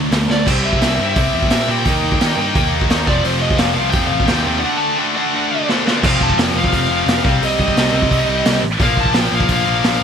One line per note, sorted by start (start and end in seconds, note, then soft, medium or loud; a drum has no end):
0.00 0.45 D3 medium
0.00 0.45 F#3 loud
0.00 0.10 A3 medium
0.00 0.46 A3 medium
0.00 0.46 D4 loud
0.11 0.25 D2 loud
0.11 0.28 D3 medium
0.11 0.28 A3 medium
0.11 snare loud
0.11 open hi-hat medium
0.30 0.43 D2 loud
0.30 0.45 D3 medium
0.30 0.45 A3 medium
0.30 0.48 D5 medium
0.30 snare medium
0.46 0.79 C2 loud
0.46 0.80 C3 medium
0.46 0.82 G3 loud
0.46 0.81 C4 loud
0.46 0.82 E4 loud
0.46 0.53 C5 medium
0.46 kick loud
0.46 crash loud
0.64 1.17 E5 medium
0.73 kick medium
0.81 0.98 C2 medium
0.81 0.97 C3 medium
0.81 0.98 G3 medium
0.81 0.99 C4 medium
0.81 0.99 E4 loud
0.81 snare loud
0.81 open hi-hat medium
0.98 1.15 G2 loud
0.98 1.14 C3 loud
0.98 1.14 G3 medium
0.98 1.15 C4 loud
0.98 1.16 E4 loud
1.15 1.33 C2 loud
1.15 1.49 C3 loud
1.15 1.49 G3 medium
1.15 1.50 C4 loud
1.15 1.50 E4 loud
1.15 1.33 E5 loud
1.15 kick loud
1.15 open hi-hat medium
1.34 1.50 E2 medium
1.34 1.70 E5 loud
1.42 kick medium
1.50 1.68 A#2 loud
1.50 1.67 C3 medium
1.50 1.67 G3 medium
1.50 1.68 C4 medium
1.50 1.68 E4 medium
1.50 snare loud
1.50 open hi-hat medium
1.68 1.85 A#2 loud
1.68 1.84 C3 medium
1.68 1.85 G3 loud
1.68 1.85 C4 loud
1.68 1.85 E4 loud
1.68 2.70 G5 loud
1.85 2.02 D#2 medium
1.85 2.19 D#3 medium
1.85 2.19 G3 loud
1.85 2.19 A#3 loud
1.85 2.20 D#4 loud
1.85 kick medium
1.85 open hi-hat medium
2.03 2.20 D#2 medium
2.12 kick medium
2.20 2.36 D#3 medium
2.20 2.37 D#3 medium
2.20 2.37 G3 loud
2.20 2.37 A#3 medium
2.20 2.38 D#4 loud
2.20 snare loud
2.20 open hi-hat medium
2.37 2.54 G2 medium
2.37 2.54 D#3 loud
2.37 2.54 G3 medium
2.37 2.54 A#3 loud
2.37 2.54 D#4 medium
2.55 2.71 D#2 loud
2.55 2.89 D#3 loud
2.55 2.90 G3 medium
2.55 2.90 A#3 loud
2.55 2.90 D#4 loud
2.55 kick loud
2.55 open hi-hat medium
2.72 2.89 D#2 medium
2.81 kick loud
2.90 3.07 D#2 loud
2.90 3.06 D#3 medium
2.90 3.07 G3 medium
2.90 3.07 A#3 medium
2.90 3.07 D#4 medium
2.90 snare loud
2.90 open hi-hat medium
3.06 3.23 F1 loud
3.06 3.23 F2 medium
3.06 3.24 C3 loud
3.06 3.24 F3 loud
3.06 3.25 A3 loud
3.06 3.24 C4 loud
3.06 3.24 F4 loud
3.06 3.24 D5 medium
3.06 kick loud
3.24 3.57 F1 loud
3.24 3.57 F2 medium
3.24 3.57 C3 loud
3.24 3.58 F3 loud
3.24 3.59 A3 loud
3.24 3.58 C4 loud
3.24 3.59 F4 loud
3.24 3.40 C5 medium
3.24 open hi-hat medium
3.41 3.59 D#5 medium
3.50 kick medium
3.58 3.75 F1 medium
3.58 3.74 F2 loud
3.58 3.76 C3 medium
3.58 3.76 F3 loud
3.58 3.76 A3 loud
3.58 3.77 C4 loud
3.58 3.76 F4 loud
3.58 3.73 F5 medium
3.58 snare loud
3.58 open hi-hat medium
3.75 3.93 C2 medium
3.75 3.92 F2 medium
3.75 3.92 C3 loud
3.75 3.92 F3 medium
3.75 3.94 A3 loud
3.75 3.94 C4 medium
3.75 3.94 F4 loud
3.75 3.89 F5 loud
3.89 4.26 F2 medium
3.89 4.07 G5 loud
3.89 open hi-hat medium
3.94 4.10 F1 loud
3.94 4.27 C3 medium
3.94 4.26 F3 loud
3.94 4.28 A3 loud
3.94 4.28 C4 loud
3.94 4.27 F4 loud
3.94 kick loud
4.07 4.26 F5 medium
4.12 4.28 A1 medium
4.20 kick medium
4.26 4.45 D#2 loud
4.26 4.43 F2 loud
4.26 4.44 C3 loud
4.26 4.44 F3 medium
4.26 4.45 A3 medium
4.26 4.45 C4 loud
4.26 4.45 F4 medium
4.26 4.41 G5 medium
4.26 snare loud
4.26 open hi-hat medium
4.42 4.62 F2 medium
4.42 4.62 C3 medium
4.42 4.62 F3 loud
4.42 4.62 A3 loud
4.42 4.62 C4 loud
4.42 4.59 G5 loud
4.46 4.63 D#2 loud
4.46 4.63 F4 loud
4.60 4.96 D3 medium
4.60 4.96 A3 medium
4.60 4.97 D4 loud
4.60 4.80 F#5 loud
4.64 4.97 F#4 loud
4.77 4.97 A5 medium
4.96 5.13 D3 medium
4.96 5.14 A3 medium
4.96 5.14 D4 medium
4.96 5.14 F#4 loud
4.96 5.01 G5 medium
5.15 5.31 D3 medium
5.15 5.32 A3 medium
5.15 5.32 D4 loud
5.15 5.32 F#4 loud
5.15 5.64 F#5 loud
5.33 5.66 D3 medium
5.33 5.67 A3 loud
5.33 5.67 D4 loud
5.33 5.67 F#4 loud
5.67 5.84 D3 medium
5.67 5.85 A3 medium
5.67 5.85 D4 medium
5.67 5.85 F#4 loud
5.67 snare medium
5.86 6.02 D3 loud
5.86 6.02 A3 medium
5.86 6.02 D4 medium
5.86 6.02 F#4 loud
5.86 snare loud
6.01 6.16 F1 medium
6.01 6.70 F2 loud
6.01 6.70 C3 loud
6.01 6.70 F3 loud
6.01 6.71 A3 loud
6.01 6.72 C4 loud
6.01 6.22 F5 loud
6.01 kick loud
6.01 crash loud
6.20 6.33 F1 medium
6.20 6.39 A5 loud
6.20 kick medium
6.30 kick medium
6.37 6.50 F1 loud
6.37 6.56 G5 medium
6.37 snare loud
6.37 open hi-hat medium
6.54 6.67 F1 loud
6.54 6.74 F5 loud
6.64 kick medium
6.71 6.86 F1 loud
6.71 7.22 F2 medium
6.71 7.23 C3 medium
6.71 7.23 F3 medium
6.71 7.23 A3 medium
6.71 7.23 C4 medium
6.71 kick loud
6.71 open hi-hat medium
6.75 7.39 F5 loud
6.89 7.02 F1 medium
6.89 7.04 F2 medium
6.89 7.06 C3 medium
6.89 7.06 F3 loud
7.05 7.19 F1 loud
7.05 7.22 F2 medium
7.05 7.22 C3 medium
7.05 7.24 F3 loud
7.05 snare loud
7.05 open hi-hat medium
7.24 7.38 C2 loud
7.24 7.92 C3 loud
7.24 7.93 G3 medium
7.24 7.93 C4 loud
7.24 7.92 D#4 loud
7.24 kick loud
7.42 7.54 C2 medium
7.42 8.60 D#5 loud
7.42 open hi-hat medium
7.59 7.72 C2 loud
7.59 kick medium
7.68 kick medium
7.76 7.89 C2 loud
7.76 snare loud
7.76 open hi-hat medium
7.93 8.06 C2 loud
7.93 8.63 C3 medium
7.93 8.62 G3 medium
7.93 8.62 C4 medium
7.93 8.62 D#4 medium
8.02 kick medium
8.10 8.24 C2 loud
8.10 8.27 C3 medium
8.10 8.27 G3 medium
8.10 8.26 C4 medium
8.10 kick medium
8.10 open hi-hat medium
8.27 8.41 C2 loud
8.27 8.63 C3 medium
8.27 8.62 G3 medium
8.27 8.61 C4 loud
8.45 8.59 C2 loud
8.45 snare loud
8.45 open hi-hat medium
8.63 8.76 A1 loud
8.80 8.93 A#1 loud
8.80 9.47 A#2 loud
8.80 9.48 D3 medium
8.80 9.48 F3 loud
8.80 9.49 A#3 medium
8.80 9.50 D4 loud
8.80 8.99 F5 loud
8.80 kick loud
8.80 open hi-hat medium
8.97 9.10 A#1 medium
8.97 9.17 A5 loud
8.97 kick medium
9.06 kick medium
9.14 9.28 A#1 loud
9.14 9.33 G5 medium
9.14 snare loud
9.14 open hi-hat medium
9.33 9.45 A#1 medium
9.33 9.51 F5 medium
9.40 kick medium
9.48 9.62 A#1 loud
9.48 10.03 A#2 medium
9.48 10.03 D3 medium
9.48 10.03 F3 medium
9.48 10.03 A#3 loud
9.48 10.03 D4 medium
9.48 kick medium
9.48 open hi-hat medium
9.53 10.03 F5 loud
9.64 9.80 A#1 medium
9.64 9.80 A#2 medium
9.64 9.82 F3 medium
9.64 9.82 A#3 medium
9.82 9.97 A#1 loud
9.82 10.03 A#2 medium
9.82 10.03 F3 medium
9.82 10.03 A#3 loud
9.82 snare loud
9.82 open hi-hat medium